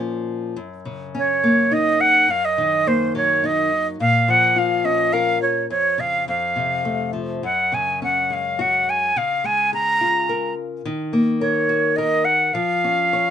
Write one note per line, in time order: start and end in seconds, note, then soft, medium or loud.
0.00 0.53 A#2 medium
0.00 0.55 F3 soft
0.00 0.53 A#3 soft
0.00 0.54 C#4 soft
0.56 2.26 F#2 medium
0.85 1.97 C#3 soft
1.15 2.26 C#4 medium
1.15 1.75 C#5 medium
1.44 2.27 A#3 medium
1.71 2.27 D#4 medium
1.71 2.02 D#5 medium
2.01 2.32 F#5 medium
2.28 3.96 F#2 medium
2.28 2.46 F5 medium
2.45 2.89 D#5 medium
2.58 3.69 D#3 medium
2.87 3.97 A#3 medium
2.87 3.16 C5 medium
3.15 3.98 F#3 medium
3.15 3.47 C#5 medium
3.44 3.99 D#4 medium
3.44 3.87 D#5 medium
4.00 5.66 A#2 medium
4.00 4.32 F5 medium
4.28 5.38 F3 medium
4.28 4.60 F#5 medium
4.56 5.67 F4 medium
4.56 4.86 F5 medium
4.85 5.68 C#4 medium
4.85 5.14 D#5 medium
5.13 5.69 A#4 medium
5.13 5.42 F5 medium
5.42 5.69 C#5 medium
5.70 6.26 F2 medium
5.70 6.02 C#5 medium
5.98 6.26 C#3 soft
5.98 6.28 F5 medium
6.28 7.40 F2 medium
6.28 7.11 F5 medium
6.56 7.41 C3 soft
6.85 7.42 A3 medium
7.13 7.42 F3 soft
7.43 9.12 F#2 medium
7.43 7.76 F#5 medium
7.72 8.84 C#3 soft
7.72 8.02 G#5 medium
8.02 9.13 C#4 soft
8.02 8.35 F#5 medium
8.30 9.13 G#3 soft
8.30 8.63 F5 medium
8.59 9.14 F#4 medium
8.59 8.91 F#5 medium
8.90 9.19 G#5 medium
9.16 10.81 C#3 medium
9.16 9.47 F5 medium
9.44 10.54 G#3 soft
9.44 9.73 G#5 medium
9.73 10.82 G#4 soft
9.73 10.54 A#5 medium
10.01 10.83 F4 soft
10.29 10.84 A#4 medium
10.85 12.52 D#3 medium
11.13 12.23 A#3 medium
11.41 11.97 A#4 medium
11.41 11.98 C#5 medium
11.69 12.53 F#4 medium
11.96 12.54 A#4 medium
11.96 12.26 D#5 medium
12.25 12.55 F#5 medium
12.54 13.30 F3 medium
12.54 13.30 F5 medium
12.84 13.30 C#4 soft
13.13 13.30 C#5 medium